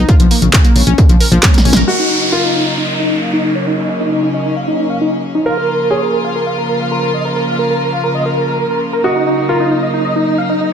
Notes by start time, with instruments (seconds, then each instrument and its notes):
0.09 synth pluck F4, kick, closed hi-hat
0.20 fm bass A#1, synth pluck F3, closed hi-hat
0.31 synth pluck A#3, open hi-hat
0.42 fm bass A#1, synth pluck C#3, closed hi-hat
0.53 synth pluck C#3, kick, clap, closed hi-hat
0.65 synth pluck A#3, closed hi-hat
0.76 fm bass A#1, synth pluck C#3, open hi-hat
0.87 fm bass A#1, synth pluck C#4, closed hi-hat
0.98 synth pluck C#3, kick, closed hi-hat
1.09 fm bass A#1, synth pluck F3, closed hi-hat
1.21 synth pluck A#4, open hi-hat
1.32 fm bass A#1, synth pluck F3, closed hi-hat
1.43 synth pluck C#4, kick, snare, clap, closed hi-hat
1.54 synth pluck A#3, snare, closed hi-hat
1.65 fm bass A#1, synth pluck C#4, open hi-hat
1.73 fm bass A#1, synth pluck A#4, snare, closed hi-hat
1.88 string section C#3 F#3 A#3 D#4, grand piano F#4, supersaw synth D#5, downlifter
1.99 supersaw synth D#4
2.10 supersaw synth D#4
2.21 supersaw synth D#4
2.32 grand piano F4, supersaw synth A#4
2.44 supersaw synth D#4
2.55 supersaw synth D#4
2.66 supersaw synth D#5
2.77 supersaw synth D#4
2.89 supersaw synth D#5
3.00 supersaw synth D#4
3.11 supersaw synth D#4
3.22 supersaw synth F5
3.33 supersaw synth D#4
3.44 supersaw synth D#4
3.55 supersaw synth C#5
3.67 string section C#4, supersaw synth D#4
3.78 supersaw synth D#4
3.89 supersaw synth D#5
4.00 supersaw synth D#4
4.12 supersaw synth D#4
4.23 supersaw synth D#4
4.34 supersaw synth D#5
4.45 supersaw synth D#4
4.56 supersaw synth F5
4.68 supersaw synth D#4
4.79 supersaw synth D#4
4.90 supersaw synth F5
5.01 supersaw synth D#4
5.13 supersaw synth D#4
5.35 supersaw synth D#4
5.46 string section C#3 F3 A#3 F4, grand piano A#4, supersaw synth F5
5.57 supersaw synth A#4
5.68 supersaw synth A#4
5.80 supersaw synth A#4
5.91 grand piano G#4, supersaw synth C#5
6.02 supersaw synth A#4
6.13 supersaw synth A#4
6.25 supersaw synth F5
6.36 supersaw synth A#4
6.47 supersaw synth F5
6.58 supersaw synth A#4
6.69 supersaw synth A#4
6.80 supersaw synth F5
6.92 supersaw synth A#4
7.03 supersaw synth A#4
7.14 supersaw synth D#5
7.25 supersaw synth A#4
7.36 supersaw synth A#4
7.48 supersaw synth F5
7.59 supersaw synth A#4
7.70 supersaw synth A#4
7.81 supersaw synth A#4
7.92 supersaw synth F5
8.04 supersaw synth A#4
8.15 supersaw synth D#5
8.26 supersaw synth A#4
8.37 supersaw synth A#4
8.48 supersaw synth A#4
8.59 supersaw synth A#4
8.71 supersaw synth A#4
8.93 supersaw synth A#4
9.04 string section F#3 D#4, grand piano F#4, supersaw synth D#5
9.16 supersaw synth D#4
9.27 supersaw synth D#4
9.38 supersaw synth D#4
9.49 grand piano F4, supersaw synth A#4
9.60 supersaw synth D#4
9.71 supersaw synth D#4
9.83 supersaw synth D#5
9.94 supersaw synth D#4
10.05 supersaw synth D#5
10.16 supersaw synth D#4
10.27 supersaw synth D#4
10.38 supersaw synth F5
10.49 supersaw synth D#4
10.61 supersaw synth D#4